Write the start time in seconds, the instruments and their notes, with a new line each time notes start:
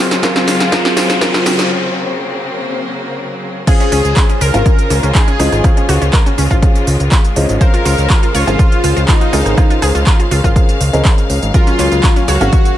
Already playing: string section C#3 F#3 G#3 C4, felt piano F#3 C4 G#4 A#4 F5, supersaw synth F4, riser
0.11 snare, closed hi-hat, shaker
0.23 felt piano F#3 C4 G#4 A#4 F5, supersaw synth F4, synth pluck A#4, kick, snare, closed hi-hat, shaker
0.36 synth pluck C4, snare, shaker
0.48 synth pluck C4, snare, open hi-hat, shaker
0.60 snare, closed hi-hat, shaker
0.72 felt piano F#3 C4 G#4 A#4 F5, supersaw synth F4, synth pluck A#4, kick, snare, closed hi-hat, shaker
0.85 synth pluck C4, snare, shaker
0.97 synth pluck C4, snare, open hi-hat, shaker
1.10 snare, closed hi-hat, shaker
1.21 felt piano F#3 C4 G#4 A#4 F5, supersaw synth F4, synth pluck A#4, kick, snare, closed hi-hat, shaker
1.34 synth pluck C4, snare, shaker
1.46 synth pluck C4, snare, open hi-hat, shaker
1.59 snare, closed hi-hat, shaker
1.71 string section A#3
3.67 felt piano C#4 F4 G#4 C5 F5, string section F4, synth pluck G#4, supersaw synth G#4, violin section G#4, kick, closed hi-hat, crash, shaker
3.80 synth pluck C#4, closed hi-hat, shaker
3.92 analog synth bass C#2, synth pluck C#4, open hi-hat, shaker
4.05 analog synth bass C#2, closed hi-hat, shaker
4.17 synth pluck C#4, kick, clap, closed hi-hat, shaker
4.29 synth pluck C#4, closed hi-hat, shaker
4.41 analog synth bass C#2, supersaw synth A#4, synth pluck A#4, violin section A#4, open hi-hat, shaker
4.54 analog synth bass G#1, felt piano C#4 F4 G#4 C5 F5, synth pluck C#4, closed hi-hat, shaker
4.66 synth pluck C#4, kick, closed hi-hat, shaker
4.79 closed hi-hat, shaker
4.90 analog synth bass C#2, synth pluck C#4, open hi-hat, shaker
5.03 analog synth bass C#2, synth pluck C#4, closed hi-hat, shaker
5.15 synth pluck D#4, violin section G#4, supersaw synth G#4, kick, clap, closed hi-hat, shaker
5.28 synth pluck C#4, closed hi-hat, shaker
5.39 analog synth bass C#2, felt piano C#4 F4 G#4 C5 D#5, synth pluck C#4, cross-stick, open hi-hat, shaker
5.52 analog synth bass G#1, cross-stick, closed hi-hat, shaker
5.64 string section A#3, felt piano C#4 F4 G#4 C5 F5, synth pluck C#4, kick, cross-stick, closed hi-hat, shaker
5.77 synth pluck C#4, closed hi-hat, shaker
5.89 analog synth bass C#2, synth pluck F#4, cross-stick, open hi-hat, shaker
6.01 analog synth bass C#2, synth pluck C#4, closed hi-hat, shaker
6.13 synth pluck A#4, kick, clap, closed hi-hat, shaker
6.26 synth pluck C#4, closed hi-hat, shaker
6.38 analog synth bass C#2, synth pluck C#4, open hi-hat, shaker
6.51 analog synth bass G#1, felt piano C#4 F4 G#4 C5 F5, synth pluck F4, kick, closed hi-hat, shaker
6.62 kick, closed hi-hat, shaker
6.75 closed hi-hat, shaker
6.87 analog synth bass C#2, open hi-hat, shaker
7.00 analog synth bass C#2, closed hi-hat, shaker
7.12 kick, clap, closed hi-hat, shaker
7.25 closed hi-hat, shaker
7.36 analog synth bass C#2, felt piano C#4 F4 G#4 C5 D#5, open hi-hat, shaker
7.49 analog synth bass G#1, closed hi-hat, shaker
7.61 felt piano C#4 G#4 A#4 C5 F5, supersaw synth A#4, violin section A#4, synth pluck C5, string section C5 F5, kick, closed hi-hat, shaker
7.74 synth pluck F4, closed hi-hat, shaker
7.85 analog synth bass C#2, synth pluck F4, open hi-hat, shaker
7.98 analog synth bass C#2, closed hi-hat, shaker
8.10 synth pluck F4, kick, clap, closed hi-hat, shaker
8.23 synth pluck F4, closed hi-hat, shaker
8.34 analog synth bass C#2, supersaw synth F4, violin section F4, synth pluck C#5, open hi-hat, shaker
8.47 analog synth bass G#1, felt piano C#4 G#4 A#4 C5 F5, synth pluck F4, closed hi-hat, shaker
8.59 synth pluck F4, kick, closed hi-hat, shaker
8.72 closed hi-hat, shaker
8.84 analog synth bass C#2, synth pluck F4, open hi-hat, shaker
8.97 analog synth bass C#2, synth pluck F4, closed hi-hat, shaker
9.08 supersaw synth D#4, violin section D#4, synth pluck F4, kick, clap, closed hi-hat, shaker
9.21 synth pluck F4, closed hi-hat, shaker
9.33 analog synth bass C#2, felt piano C#4 G#4 A#4 C5 D#5, synth pluck F4, cross-stick, open hi-hat, shaker
9.46 analog synth bass G#1, cross-stick, closed hi-hat, shaker
9.57 felt piano C#4 G#4 A#4 C5 F5, synth pluck F4, kick, cross-stick, closed hi-hat, shaker
9.70 synth pluck F4, closed hi-hat, shaker
9.82 analog synth bass C#2, synth pluck G#4, cross-stick, open hi-hat, shaker
9.95 analog synth bass C#2, synth pluck F4, closed hi-hat, shaker
10.07 synth pluck F4, kick, clap, closed hi-hat, shaker
10.20 synth pluck F4, closed hi-hat, shaker
10.31 analog synth bass C#2, synth pluck F4, open hi-hat, shaker
10.44 analog synth bass G#1, felt piano C#4 G#4 A#4 C5 F5, synth pluck F4, kick, closed hi-hat, shaker
10.56 kick, closed hi-hat, shaker
10.69 closed hi-hat, shaker
10.81 analog synth bass C#2, open hi-hat, shaker
10.93 analog synth bass C#2, felt piano C#4 G#4 A#4 C5 D#5, closed hi-hat, shaker
11.05 kick, clap, closed hi-hat, shaker
11.18 closed hi-hat, shaker
11.30 analog synth bass C#2, open hi-hat, shaker
11.42 analog synth bass G#1, closed hi-hat, shaker
11.54 felt piano F#3 C#4 G#4 A#4 F5, string section F#3 A#3, supersaw synth F4, violin section F4, synth pluck A#4, kick, closed hi-hat, shaker
11.67 synth pluck C#4, closed hi-hat, shaker
11.79 analog synth bass C#2, synth pluck C#4, open hi-hat, shaker
11.92 analog synth bass C#2, closed hi-hat, shaker
12.03 synth pluck C#4, kick, clap, closed hi-hat, shaker
12.16 synth pluck C#4, closed hi-hat, shaker
12.28 analog synth bass C#2, violin section F#4, supersaw synth F#4, synth pluck C#5, open hi-hat, shaker
12.41 analog synth bass G#1, felt piano C#4 F#4 G#4 A#4 F5, synth pluck C#4, closed hi-hat, shaker
12.53 synth pluck C#4, kick, closed hi-hat, shaker
12.65 closed hi-hat, shaker